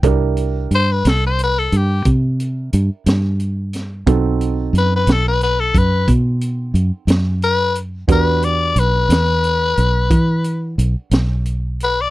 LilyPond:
<<
  \new Staff \with { instrumentName = "Tenor saxophone" } { \time 12/8 \key e \minor \tempo 4. = 60 r4 c''16 b'16 a'16 c''16 b'16 a'16 g'8 r2. | r4 b'16 b'16 a'16 b'16 b'16 a'16 b'8 r2 b'8 r8 | b'8 d''8 b'2. r4. b'16 d''16 | }
  \new Staff \with { instrumentName = "Upright piano" } { \time 12/8 \key e \minor <d' e' g' bes'>1. | <c' dis' fis' a'>1. | <d' fis' g' b'>1. | }
  \new Staff \with { instrumentName = "Fingered electric bass" } { \clef bass \time 12/8 \key e \minor c,4 g,8 c,4 g,8 c4 g,16 r16 g,4. | b,,4 fis,8 b,,4 fis,8 b,4 fis,16 r16 fis,4. | e,4 b,,8 e,4 b,,8 e4 b,,16 r16 b,,4. | }
  \new DrumStaff \with { instrumentName = "Drums" } \drummode { \time 12/8 <hh bd>8 hh8 hh8 <hh sn>8 hh8 hh8 <hh bd>8 hh8 hh8 <hh sn>8 hh8 <hh sn>8 | <hh bd>8 hh8 hh8 <hh sn>8 hh8 <hh bd>8 <hh bd>8 hh8 hh8 <hh sn>8 hh8 hh8 | <hh bd>8 hh8 hh8 <hh sn>8 hh8 hh8 <hh bd>8 hh8 hh8 <hh sn>8 hh8 hh8 | }
>>